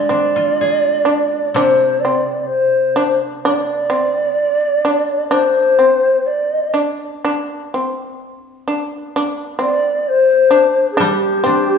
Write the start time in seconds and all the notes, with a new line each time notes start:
Already playing: D3 G#3 D5
0.09 C4 D4
0.36 F4
0.61 G#4
1.05 D4
1.47 D5
1.54 C3 D4 C5
2.00 D5
2.05 C4
2.41 D5
2.46 C5
2.96 D4
3.44 D4 D5
3.90 C4
4.85 D4
5.29 D4 C5
5.79 C4
6.26 D5
6.74 D4
7.25 D4
7.74 C4
8.68 D4
9.16 D4
9.59 C4 D5
10.08 C5
10.51 D4
10.92 G#4
10.97 G3 D4 G4
11.44 C4 D4